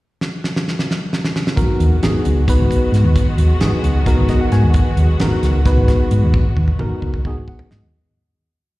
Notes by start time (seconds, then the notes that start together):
0.21 snare
0.44 snare
0.56 snare
0.68 snare
0.79 snare
0.91 snare
1.13 snare
1.24 snare
1.36 snare
1.47 snare
1.56 G#1 D#3 F#3 G#3 B3 D#4 F#4 A#4, kick, closed hi-hat
1.80 D#2, closed hi-hat
1.91 muted fingered electric bass stroke
2.02 G#1 B3 D#4 F#4 G#4, snare, closed hi-hat
2.25 C#2, closed hi-hat
2.48 B3 D#4 F#4 B4, kick, closed hi-hat
2.59 G#1
2.71 kick, closed hi-hat
2.81 muted fingered electric bass stroke
2.92 G#2, snare, closed hi-hat
3.04 D#2
3.15 G#1, kick, closed hi-hat
3.37 D#2, closed hi-hat
3.49 muted fingered electric bass stroke
3.60 G#1 B3 D#4 F#4 G#4, snare, closed hi-hat
3.83 C#2, closed hi-hat
4.06 B3 D#4 F#4 A#4, kick, snare, closed hi-hat
4.17 G#1
4.29 D#5, kick, snare, closed hi-hat
4.41 F#5
4.52 G#2 G#5, snare, closed hi-hat
4.63 D#2
4.74 G#1, kick, closed hi-hat
4.97 D#2, closed hi-hat
5.09 muted fingered electric bass stroke
5.20 G#1 B3 D#4 F#4 A#4, snare, closed hi-hat
5.43 C#2, snare, closed hi-hat
5.65 B3 D#4 F#4 B4, kick, snare, closed hi-hat
5.77 G#1
5.88 kick, snare, closed hi-hat
6.00 muted fingered electric bass stroke
6.11 G#2, closed hi-hat
6.23 D#2
6.34 G#1, kick
6.57 D#2, kick
6.68 muted fingered electric bass stroke, high tom
6.79 G#1 B3 D#4 F#4 A#4, mid tom
7.02 C#2, kick
7.14 kick
7.25 B3 D#4 F#4 G#4, kick
7.37 G#1
7.48 F#5, kick
7.59 floor tom
7.71 G#2 D#5, snare
7.83 D#2